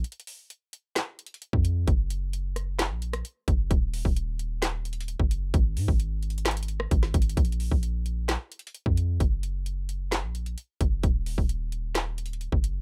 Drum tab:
HH |x---x---x---o-----------x-----------x-----------x-----------x---x---x---x-----------x-----------|x-----------x-----------x-----------x-----------x-----------x-----x-----x-----------x-----------|x-----------o-----------x-----------x-----------x-----------x---x---x---x-----------x-----------|x-----------o-----------x-----------x---x---x---x--x--x--x--x-----------x-----------x---x---x---|
CP |------------------------------------------------x-----------------------------------------------|------------------------------------------------x-----------------------------------------------|------------------------------------------------x-----------------------------------------------|------------------------------------------------x-----------------------------------------------|
SD |------------------------------------------------o-----------------------------------------------|------------------------------------r-----------o-----------------r-----------------------------|------------------------------------------------o-----------------------------------------------|------------------------------------------------o-----------------r-----------o-----------------|
BD |------------------------------------------------------------------------------o-----------------|o-----------------------------------------------------------------------------------o-----------|o-----------------o-----------------------------------------------------------o-----------------|o-----------------o-----------------------------------------------------o-----------o-----------|

HH |x---x---x---o-----------x-----------x-----------x-----------x---x---x---x-----------x-----------|x-----------x-----------x-----------x-----------x-----------x-----x-----x-----------x-----------|x-----------o-----------x-----------x-----------x-----------x---x---x---x-----------x-----------|
CP |------------------------------------------------x-----------------------------------------------|------------------------------------------------x-----------------------------------------------|------------------------------------------------x-----------------------------------------------|
SD |------------------------------------------------o-----------------------------------------------|------------------------------------------------o-----------------------------------------------|------------------------------------------------o-----------------------------------------------|
BD |o-----------------o-----------------------------------------------------------o-----------------|o-----------------------------------------------------------------------------------o-----------|o-----------------o-----------------------------------------------------------o-----------------|